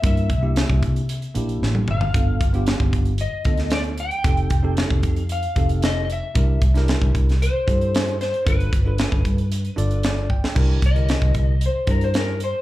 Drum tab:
CC |----------------|----------------|----------------|----------------|
HH |xxx-x-xxxxxx----|x-xxx-xxx-xxxxxx|xxx-x-xxxxxxx-x-|x-xxx-xxx-xxxxxx|
SD |----o-------o---|----o------oo---|----o-------o---|---oo--o----o-o-|
T1 |-------------o--|----------------|----------------|----------------|
T2 |--------------o-|----------------|----------------|----------------|
FT |---------------o|----------------|----------------|----------------|
BD |o-o--oo---------|o-o--oo---o-----|o-o--oo---o-----|o-o--oo---o-----|

CC |----------------|x---------------|
HH |xxx-x-xxxxxxx---|--xxx-x-x-xxx-x-|
SD |----o-------o--o|----o-------o---|
T1 |----------------|----------------|
T2 |----------------|----------------|
FT |----------------|----------------|
BD |o-o--oo-------o-|o-o--oo---o-----|